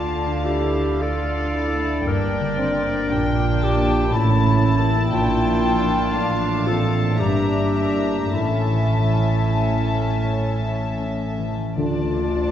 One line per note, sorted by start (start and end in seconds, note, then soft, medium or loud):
0.00 2.02 D2 soft
0.00 2.01 D3 soft
0.00 2.10 D3 soft
0.00 1.70 A3 soft
0.00 2.02 A3 soft
0.00 0.25 D4 soft
0.00 0.44 D4 soft
0.00 4.08 D4 soft
0.00 0.42 F4 medium
0.00 0.98 A4 soft
0.00 1.00 F5 soft
0.00 0.96 A5 soft
0.26 1.34 D4 soft
0.45 1.00 E4 soft
0.45 1.03 G4 medium
0.63 3.77 D5 soft
0.99 1.54 F4 soft
0.99 2.10 A4 soft
0.99 2.09 A4 medium
0.99 2.05 D5 soft
0.99 2.06 F5 soft
1.36 2.73 D4 soft
1.54 2.06 E4 soft
1.71 2.10 A3 soft
2.05 3.08 G1 soft
2.05 4.15 G2 soft
2.05 3.08 G2 soft
2.05 7.21 A#3 soft
2.05 2.58 D4 medium
2.05 3.65 A#4 medium
2.05 3.08 D5 soft
2.05 3.08 G5 soft
2.40 4.15 D3 soft
2.57 3.10 C4 soft
2.74 4.15 D4 soft
3.10 4.12 A#1 medium
3.10 4.12 A#2 soft
3.10 4.12 D4 soft
3.10 4.77 G4 soft
3.10 3.61 G5 soft
3.10 4.12 G5 soft
3.44 4.77 A#4 soft
3.62 4.15 G4 medium
3.62 4.11 A5 medium
3.78 4.15 D5 soft
4.11 5.13 A1 medium
4.11 5.12 A2 medium
4.11 5.16 A2 soft
4.11 4.96 C#4 medium
4.11 6.11 E4 medium
4.11 4.87 E4 medium
4.11 7.16 A5 medium
4.11 5.13 A5 soft
4.44 5.16 C#4 soft
4.78 5.16 G4 soft
4.78 6.48 A#4 soft
5.11 6.13 A#1 medium
5.11 7.24 A#2 medium
5.11 6.13 A#2 medium
5.11 8.29 D4 medium
5.11 6.68 F4 medium
5.11 6.13 G5 medium
5.45 7.24 F3 soft
5.80 7.56 D4 soft
6.14 7.21 A1 soft
6.14 7.20 A2 soft
6.14 6.67 D4 medium
6.14 7.24 F4 soft
6.14 7.20 F5 soft
6.49 7.94 A#4 soft
6.67 7.21 C4 medium
6.67 7.21 A4 medium
6.84 8.38 D5 soft
7.19 8.34 G1 soft
7.19 8.38 G2 soft
7.19 8.33 G2 medium
7.19 8.31 A#3 soft
7.19 8.33 D4 soft
7.19 8.32 G4 medium
7.19 8.31 E5 soft
7.19 7.74 A#5 soft
7.57 8.37 D4 soft
7.75 8.32 A#5 soft
7.94 9.47 E4 soft
7.94 8.38 A#4 soft
8.32 11.52 A1 soft
8.32 11.81 A2 soft
8.32 11.52 A2 soft
8.32 11.44 A3 soft
8.32 11.56 C#4 soft
8.32 11.44 C#4 soft
8.32 10.58 E4 medium
8.32 11.52 E5 soft
8.32 11.56 A5 soft
8.71 11.37 E3 soft
9.10 10.99 C#4 soft
9.48 10.61 E4 soft
9.87 12.51 A4 soft
10.24 11.81 C#5 soft
10.62 11.81 E4 soft
11.00 11.81 C#4 soft
11.38 11.81 E3 soft
11.75 12.51 D2 soft
11.75 12.51 D3 soft
11.75 12.22 A3 soft
11.75 12.51 D4 soft
11.75 12.22 D4 soft
11.75 12.51 F4 medium
11.75 12.51 D5 soft
11.75 12.51 A5 soft
12.14 12.51 A3 soft